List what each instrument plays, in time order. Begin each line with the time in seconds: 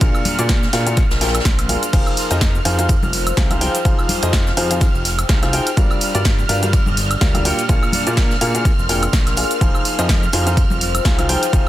Already playing: ambient pad D4 D5 G5, analog synth pad F6
0.01 analog synth bass A#1, grand piano A#2 D4 F4 G#4 A#4 F5, ambient pad A#4, kick, closed hi-hat, ride, tambourine, shaker
0.14 tambourine, high woodblock, shaker
0.25 open hi-hat, ride, tambourine, high conga
0.38 grand piano A#2 D4 F4 G#4 A#4 D5, analog synth bass A#2, closed hi-hat, tambourine, shaker
0.45 ambient pad F5 C6, snare, closed hi-hat, ride
0.49 kick, tambourine, shaker
0.63 snare, tambourine, shaker
0.73 grand piano A#2 D4 F4 G#4 A#4 F5, analog synth bass A#2, snare, open hi-hat, ride, tambourine
0.87 grand piano A#2 D4 F4 G#4 A#4 F5, closed hi-hat, tambourine, shaker
0.96 kick, snare, closed hi-hat, ride, tambourine, shaker
1.11 analog synth bass A#1, snare, ride, tambourine, shaker
1.21 grand piano A#2 D4 F4 G#4 A#4 G5, snare, open hi-hat, ride, tambourine
1.28 snare, ride
1.34 snare, closed hi-hat, ride, tambourine, high woodblock, shaker
1.40 snare, ride
1.45 analog synth bass A#1, kick, snare, closed hi-hat, ride, tambourine, shaker
1.58 closed hi-hat, tambourine, high woodblock, shaker
1.69 grand piano D4 F4 G#4 A#4 F5, open hi-hat, ride, tambourine, high conga
1.83 closed hi-hat, tambourine, shaker
1.93 analog synth bass F1, grand piano F3 D#4 F4 G#4 C5 F5, ambient pad F4, analog synth pad F6, kick, closed hi-hat, crash, ride, tambourine, shaker
2.07 tambourine, high woodblock, shaker
2.17 ambient pad C5, open hi-hat, ride, tambourine
2.31 analog synth bass F2, grand piano F3 D#4 F4 G#4 C5 D#5, closed hi-hat, ride, tambourine, shaker
2.40 ambient pad G5, kick, snare, closed hi-hat, ride, tambourine, shaker
2.55 tambourine, shaker
2.65 analog synth bass F2, grand piano F3 D#4 F4 G#4 C5 F5, open hi-hat, ride, tambourine
2.79 grand piano F3 D#4 F4 G#4 C5 F5, closed hi-hat, tambourine, shaker
2.89 kick, closed hi-hat, ride, tambourine, shaker
3.03 analog synth bass F1, tambourine, high conga, shaker
3.13 open hi-hat, ride, tambourine
3.27 closed hi-hat, tambourine, high woodblock, shaker
3.37 analog synth bass C2, grand piano F3 D#4 F4 G#4 C5 F5, kick, snare, closed hi-hat, shaker
3.51 grand piano F3 D#4 F4 G#4 C5 F5, closed hi-hat, tambourine, high conga, high woodblock, shaker
3.61 grand piano F3 D#4 F4 G#4 C5 G5, open hi-hat, ride, tambourine
3.74 closed hi-hat, ride, tambourine, shaker
3.85 analog synth bass F1, grand piano F3 D#4 F4 G#4 C5 F5, kick, closed hi-hat, ride, tambourine, shaker
3.99 tambourine, high woodblock, shaker
4.09 open hi-hat, ride, tambourine, high conga
4.23 analog synth bass F2, grand piano F3 D#4 F4 G#4 C5 D#5, closed hi-hat, tambourine, shaker
4.33 kick, snare, closed hi-hat, ride, tambourine, shaker
4.46 snare, tambourine, shaker
4.57 analog synth bass F2, grand piano F3 D#4 F4 G#4 C5 F5, open hi-hat, ride, tambourine
4.71 grand piano F3 D#4 F4 G#4 C5 F5, closed hi-hat, tambourine, shaker
4.81 kick, snare, closed hi-hat, ride, tambourine, shaker
4.95 analog synth bass F1, tambourine, shaker
5.05 snare, open hi-hat, ride, tambourine
5.19 closed hi-hat, high woodblock, shaker
5.29 analog synth bass C2, grand piano F3 D#4 F4 G#4 C5 F5, kick, snare, closed hi-hat, ride, tambourine, shaker
5.43 grand piano F3 D#4 F4 G#4 C5 F5, snare, closed hi-hat, tambourine, high woodblock, shaker
5.53 grand piano D#4 F4 G#4 C5 G5, open hi-hat, ride, tambourine
5.67 closed hi-hat, tambourine, shaker
5.77 analog synth bass G1, grand piano G3 D4 F4 G4 A#4 F5, ambient pad D4, kick, closed hi-hat, ride, tambourine, shaker
5.90 ambient pad D5, tambourine, high woodblock, shaker
6.01 open hi-hat, ride, tambourine
6.15 analog synth bass G2, grand piano G3 D4 F4 G4 A#4 D5, closed hi-hat, ride, tambourine, shaker
6.25 kick, snare, closed hi-hat, ride, tambourine, shaker
6.38 tambourine, shaker
6.49 analog synth bass G2, grand piano G3 D4 F4 G4 A#4 F5, open hi-hat, ride, tambourine
6.63 grand piano G3 D4 F4 G4 A#4 F5, closed hi-hat, tambourine, shaker
6.73 kick, closed hi-hat, ride, tambourine, shaker
6.86 analog synth bass G1, tambourine, high conga, shaker
6.97 open hi-hat, ride, tambourine
7.11 closed hi-hat, tambourine, high woodblock, shaker
7.21 analog synth bass D2, grand piano G3 D4 F4 G4 A#4 F5, kick, snare, closed hi-hat, ride, tambourine, shaker
7.34 grand piano G3 D4 F4 G4 A#4 F5, closed hi-hat, tambourine, high conga, high woodblock, shaker
7.45 grand piano A#2 D4 F4 G4 A#4 G5, open hi-hat, ride, tambourine
7.59 closed hi-hat, ride, tambourine, shaker
7.69 analog synth bass A#1, grand piano A#2 D4 F4 G#4 A#4 F5, ambient pad A#4, kick, closed hi-hat, ride, tambourine, shaker
7.82 tambourine, high woodblock, shaker
7.92 ambient pad F5, open hi-hat, ride, tambourine, high conga
8.07 grand piano A#2 D4 F4 G#4 A#4 D5, analog synth bass A#2, ambient pad C6, closed hi-hat, tambourine, shaker
8.17 kick, snare, closed hi-hat, ride, tambourine, shaker
8.30 snare, tambourine, shaker
8.41 grand piano A#2 D4 F4 G#4 A#4 F5, analog synth bass A#2, open hi-hat, ride, tambourine
8.55 grand piano A#2 D4 F4 G#4 A#4 F5, closed hi-hat, tambourine, shaker
8.65 kick, snare, closed hi-hat, ride, tambourine, shaker
8.78 analog synth bass F1, tambourine, shaker
8.89 grand piano A#2 D4 F4 G#4 A#4 G5, snare, open hi-hat, ride, tambourine
9.02 closed hi-hat, tambourine, high woodblock, shaker
9.13 analog synth bass A#1, kick, snare, closed hi-hat, ride, tambourine, shaker
9.26 snare, closed hi-hat, tambourine, high woodblock, shaker
9.37 grand piano D4 F4 G#4 A#4 F5, open hi-hat, ride, tambourine
9.51 closed hi-hat, tambourine, shaker
9.61 analog synth bass F1, grand piano F3 D#4 F4 G#4 C5 F5, ambient pad F4, kick, closed hi-hat, ride, tambourine, shaker
9.69 ambient pad C5
9.74 tambourine, high woodblock, shaker
9.85 open hi-hat, ride, tambourine
9.98 analog synth bass F2, grand piano F3 D#4 F4 G#4 C5 D#5, ambient pad G5, closed hi-hat, ride, tambourine, shaker
10.09 kick, snare, closed hi-hat, ride, tambourine, shaker
10.23 tambourine, shaker
10.33 analog synth bass F2, grand piano F3 D#4 F4 G#4 C5 F5, open hi-hat, ride, tambourine
10.47 grand piano F3 D#4 F4 G#4 C5 F5, closed hi-hat, tambourine, shaker
10.57 kick, closed hi-hat, ride, tambourine, shaker
10.70 analog synth bass F1, tambourine, high conga, shaker
10.81 open hi-hat, ride, tambourine
10.95 closed hi-hat, tambourine, high woodblock, shaker
11.05 analog synth bass C2, grand piano F3 D#4 F4 G#4 C5 F5, kick, snare, closed hi-hat, tambourine, shaker
11.19 grand piano F3 D#4 F4 G#4 C5 F5, closed hi-hat, tambourine, high conga, high woodblock, shaker
11.29 grand piano F3 D#4 F4 G#4 C5 G5, open hi-hat, ride, tambourine
11.43 closed hi-hat, ride, tambourine, shaker
11.53 analog synth bass F1, grand piano F3 D#4 F4 G#4 C5 F5, kick, closed hi-hat, ride, tambourine, shaker